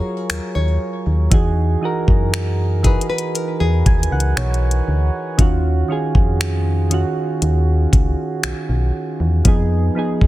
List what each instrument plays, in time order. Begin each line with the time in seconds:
Already playing: synth keys F#3 F4 G#4 C#5, nylon-string guitar G#4
0.30 fm bass D#2, nylon-string guitar A#4, finger snap, closed hi-hat
0.55 fm bass D#2, nylon-string guitar C#5
1.07 fm bass D#2
1.30 fm bass E2, synth keys E3 D#4 F#4 G#4, kick, closed hi-hat
1.82 synth keys E3 D#4 F#4 A#4
2.08 fm bass F#2, kick
2.34 finger snap, closed hi-hat
2.83 synth keys E3 D#4 F#4 B4, nylon-string guitar G#4, kick, closed hi-hat
3.01 closed hi-hat
3.10 nylon-string guitar B4
3.18 closed hi-hat
3.35 nylon-string guitar A#4, closed hi-hat
3.60 fm bass E2, nylon-string guitar G#4
3.86 fm bass D#2, synth keys G#5, kick, closed hi-hat
4.03 closed hi-hat
4.12 fm bass C#2, synth keys F#5
4.20 closed hi-hat
4.37 fm bass B1, synth keys C#5, finger snap, closed hi-hat
4.54 closed hi-hat
4.71 closed hi-hat
4.88 fm bass D2
5.38 fm bass D#2, synth keys D#3 C#4 F4 F#4, kick, closed hi-hat
5.88 synth keys D#3 C#4 F4 G#4
6.15 fm bass F2, kick
6.41 finger snap, closed hi-hat
6.90 synth keys D#3 C#4 F4 F#4, closed hi-hat
7.42 fm bass D#2, closed hi-hat
7.93 fm bass C#2, kick, closed hi-hat
8.43 fm bass B1, finger snap, closed hi-hat
8.69 fm bass B1
9.20 fm bass E2
9.45 fm bass F2, synth keys F3 B3 D#4 G#4, kick, closed hi-hat
9.95 synth keys F3 B3 D#4 G#4
10.21 fm bass F#2, kick